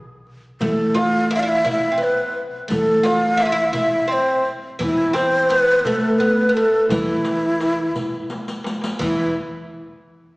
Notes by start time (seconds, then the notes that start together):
Already playing: B1
0.27 darbuka ka
0.61 E2 A3 A4, riq, darbuka dum
0.94 F4 F5, riq, darbuka tek
1.31 E4, riq, darbuka tek
1.35 D4 E5
1.40 E4 F5
1.49 E5
1.65 B1 E4, riq, darbuka dum
1.71 E5
1.92 C4
1.98 B3, riq, darbuka ka
2.03 B4
2.37 darbuka ka
2.68 E2 A3, riq, darbuka dum
2.72 A4
3.03 F4 F5, riq, darbuka tek
3.37 E4, riq, darbuka tek
3.43 F4 E5
3.52 E4
3.73 B1 E4 E5, riq, darbuka dum
4.08 C4, riq, darbuka ka
4.12 C5
4.45 riq, darbuka ka
4.79 E2 E3, riq, darbuka dum
4.83 E4
5.13 C4 C5, riq, darbuka tek
5.49 B3 B4, riq, darbuka tek
5.79 B4
5.85 B1 A3 A4, riq, darbuka dum
6.18 B3 B4, riq, darbuka ka
6.49 B3
6.54 A3 A4, riq
6.89 E2 E3 E4, riq, darbuka dum
7.25 riq, darbuka tek
7.61 riq, darbuka tek
7.96 B1, riq, darbuka dum
8.30 riq, darbuka tek
8.48 riq, darbuka ka
8.64 riq, darbuka tek
8.81 riq, darbuka ka
8.99 E2 E3 E4, riq, darbuka dum